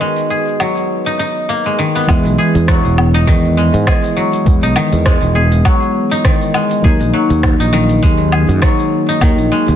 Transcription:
Already playing: guzheng D#3 D#4 G#4, synth keys B3 D#4 F#4 B4
0.01 guzheng G#3
0.18 cabasa
0.30 guzheng G#4, cabasa
0.48 cabasa
0.60 guzheng F#3, low woodblock
0.77 cabasa
1.06 guzheng D#4
1.19 guzheng D#4
1.49 guzheng A#3
1.66 guzheng G#3
1.79 guzheng D#3
1.95 guzheng B3
2.07 fretless electric bass E2, synth keys E3 G#3 B3, guzheng G#3, kick, open hi-hat, cabasa, low woodblock
2.11 synth keys E4
2.25 fretless electric bass B1, open hi-hat, cabasa
2.38 guzheng G#4
2.55 fretless electric bass E2, open hi-hat, cabasa
2.68 guzheng F#3, kick, cross-stick, open hi-hat, cabasa
2.85 fretless electric bass E1, open hi-hat, cabasa
2.97 synth keys G#3 B3, low woodblock
3.14 guzheng D#4, open hi-hat, cabasa
3.27 fretless electric bass E2, guzheng D#3, kick, open hi-hat, cabasa
3.45 cabasa
3.57 guzheng G#3
3.74 fretless electric bass G#2, open hi-hat, cabasa
3.87 guzheng G#4, kick, cross-stick, open hi-hat, cabasa, low woodblock
4.04 open hi-hat, cabasa
4.17 guzheng F#3
4.33 open hi-hat, cabasa
4.46 fretless electric bass E2, synth keys G#3 B3, kick, open hi-hat, cabasa
4.63 fretless electric bass B1, guzheng D#4, open hi-hat, cabasa
4.76 guzheng D#3, low woodblock
4.93 fretless electric bass E2, open hi-hat, cabasa
5.06 guzheng G#3, kick, cross-stick, open hi-hat, cabasa
5.22 fretless electric bass E1, open hi-hat, cabasa
5.35 synth keys G#3 B3, guzheng G#4
5.52 open hi-hat, cabasa
5.65 guzheng F#3, kick, open hi-hat, cabasa, low woodblock
5.82 cabasa
6.11 guzheng D#4, open hi-hat, cabasa
6.25 guzheng D#3, kick, cross-stick, open hi-hat, cabasa
6.41 open hi-hat, cabasa
6.54 guzheng G#3, low woodblock
6.71 open hi-hat, cabasa
6.82 fretless electric bass D#2, synth keys D#3 F#3 A#3, guzheng G#4, kick, open hi-hat, cabasa
6.86 synth keys D#4
7.00 fretless electric bass A#1, open hi-hat, cabasa
7.13 guzheng F#3
7.30 fretless electric bass D#2, open hi-hat, cabasa
7.43 kick, cross-stick, open hi-hat, cabasa, low woodblock
7.60 fretless electric bass A#1, guzheng D#4, open hi-hat, cabasa
7.71 synth keys D#3 F#3 A#3 D#4, guzheng D#3
7.90 open hi-hat, cabasa
8.03 fretless electric bass D#2, guzheng G#3, kick, open hi-hat, cabasa
8.20 cabasa
8.32 guzheng G#4, low woodblock
8.49 fretless electric bass F#2, open hi-hat, cabasa
8.62 guzheng F#3, kick, cross-stick, open hi-hat, cabasa
8.79 open hi-hat, cabasa
9.09 guzheng D#4, open hi-hat, cabasa
9.20 fretless electric bass D#2, synth keys D#3 F#3 A#3 D#4, guzheng D#3, kick, open hi-hat, cabasa, low woodblock
9.38 fretless electric bass A#1, open hi-hat, cabasa
9.52 guzheng G#3
9.68 fretless electric bass D#2, open hi-hat, cabasa

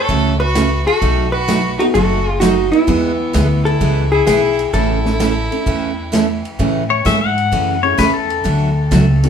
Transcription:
Already playing: upright piano A3 C#4 E4 F#4, fiddle A4, hollow-body jazz guitar C#5
0.09 upright bass C#2, steel-string acoustic guitar C#3 E3 A3 C#4 F#4, kick, ride
0.39 fiddle F#4, hollow-body jazz guitar B4
0.55 steel-string acoustic guitar C#3 E3 A3 C#4 F#4, snare, hi-hat pedal, ride
0.86 fiddle F#4, hollow-body jazz guitar A4, ride
1.02 upright bass B1, steel-string acoustic guitar B2 F#3 A3 D#4 F#4, kick, ride
1.32 fiddle F#4, hollow-body jazz guitar B4
1.48 steel-string acoustic guitar B2 F#3 A3 D#4 F#4, snare, hi-hat pedal, ride
1.78 upright piano A3 B3 D#4 F#4, fiddle D#4, hollow-body jazz guitar F#4, ride
1.94 upright bass F#1, steel-string acoustic guitar B2 F#3 A3 D#4 F#4, fiddle F#4, hollow-body jazz guitar A4, kick, ride
2.40 steel-string acoustic guitar B2 F#3 A3 D#4 F#4, fiddle D#4, hollow-body jazz guitar F#4, snare, hi-hat pedal, ride
2.72 fiddle B3, hollow-body jazz guitar E4, ride
2.87 upright bass E2, upright piano E3 B3 E4 B4, steel-string acoustic guitar E3 G#3 B3 E4 G#4, kick, ride
3.33 upright bass D2, steel-string acoustic guitar E3 G#3 B3 E4 G#4, snare, hi-hat pedal, ride
3.65 fiddle E4, hollow-body jazz guitar A4, ride
3.80 upright bass C#2, steel-string acoustic guitar E3 G#3 B3 E4 G#4, kick, ride
4.11 fiddle E4, hollow-body jazz guitar G#4
4.27 upright bass B1, steel-string acoustic guitar E3 G#3 B3 E4 G#4, fiddle E4, hollow-body jazz guitar G#4, snare, hi-hat pedal, ride
4.59 ride
4.73 upright bass A1, steel-string acoustic guitar C#3 E3 A3 C#4 A4, fiddle E4, hollow-body jazz guitar A4, kick, ride
5.05 upright piano A3 C#4 E4 A4, snare
5.20 steel-string acoustic guitar C#3 E3 A3 C#4 A4, snare, hi-hat pedal, ride
5.51 upright piano A3 C#4 E4 A4, ride
5.66 upright bass E2, steel-string acoustic guitar C#3 E3 A3 C#4 A4, kick, ride
6.12 steel-string acoustic guitar C#3 E3 A3 C#4 A4, snare, hi-hat pedal, ride
6.45 ride
6.59 upright bass A2, steel-string acoustic guitar C#3 E3 A3 C#4 G#4, kick, ride
6.90 pedal steel guitar C#5
7.05 upright bass G#2, steel-string acoustic guitar C#3 E3 A3 C#4 G#4, pedal steel guitar E5, kick, snare, hi-hat pedal, ride
7.21 pedal steel guitar F#5
7.38 ride
7.52 upright bass F#2, steel-string acoustic guitar C#3 E3 A3 C#4 G#4, kick, ride
7.83 upright piano A3 C#4 E4 G#4 A4, pedal steel guitar C#5
7.98 upright bass E2, steel-string acoustic guitar C#3 E3 A3 C#4 G#4, pedal steel guitar B4, kick, snare, hi-hat pedal, ride
8.14 pedal steel guitar A4
8.30 ride
8.44 upright bass D2, steel-string acoustic guitar B2 F#3 A3 D4 F#4, kick, ride
8.91 upright bass C#2, steel-string acoustic guitar B2 F#3 A3 D4 F#4, kick, snare, hi-hat pedal, ride
9.23 upright piano A3 B3 D4 F#4 A4, ride

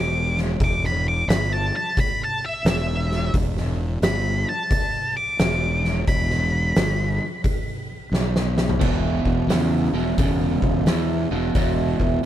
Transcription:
Already playing: fingered electric bass E1, lead electric guitar D6
0.38 snare
0.60 fingered electric bass E1, kick, open hi-hat
0.64 lead electric guitar D6
0.84 lead electric guitar B5, snare
1.08 lead electric guitar D6
1.28 fingered electric bass G1, lead electric guitar B5, snare, open hi-hat
1.53 lead electric guitar A5
1.76 lead electric guitar A5
1.97 lead electric guitar B5, kick, open hi-hat
2.24 lead electric guitar A5
2.46 lead electric guitar E5
2.65 fingered electric bass E1, lead electric guitar E5, snare, open hi-hat
3.11 snare
3.34 fingered electric bass E1, kick, open hi-hat
3.57 snare
4.02 fingered electric bass G1, lead electric guitar B5, snare, open hi-hat
4.49 lead electric guitar A5
4.71 kick, open hi-hat
5.17 lead electric guitar D6
5.39 fingered electric bass E1, snare, open hi-hat
5.84 snare
6.07 fingered electric bass E1, lead electric guitar B5, kick, open hi-hat
6.30 snare
6.76 fingered electric bass G1, snare, open hi-hat
7.44 kick, open hi-hat
8.12 fingered electric bass B1, snare
8.36 snare
8.58 snare
8.69 floor tom
8.80 fingered electric bass E1, overdriven electric guitar E2 B2, kick, crash
9.25 fingered electric bass E1, kick
9.48 fingered electric bass E2, overdriven electric guitar E2 C#3, snare, open hi-hat
9.93 fingered electric bass E1, overdriven electric guitar E2 B2
10.18 fingered electric bass E1, overdriven electric guitar E2 C#3, kick, open hi-hat
10.62 fingered electric bass E1, kick
10.85 fingered electric bass E2, overdriven electric guitar E2 B2, snare, open hi-hat
11.31 fingered electric bass E1, overdriven electric guitar E2 B2
11.55 fingered electric bass E1, overdriven electric guitar E2 B2, kick, open hi-hat
12.00 fingered electric bass E1, kick

